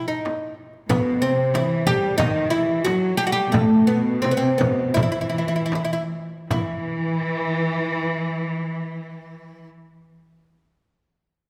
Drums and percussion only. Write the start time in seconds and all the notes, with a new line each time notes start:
0.25 darbuka tek, frame drum
0.73 darbuka ka
0.89 darbuka dum, frame drum
1.54 darbuka tek, frame drum
1.87 frame drum, darbuka dum
2.19 darbuka dum, frame drum
2.86 darbuka tek, frame drum
3.54 frame drum, darbuka dum
4.24 darbuka tek, frame drum
4.61 frame drum, darbuka dum
4.97 frame drum, darbuka dum
5.16 darbuka ka
5.35 darbuka ka
5.72 darbuka tek, frame drum
6.12 darbuka ka
6.50 frame drum, darbuka dum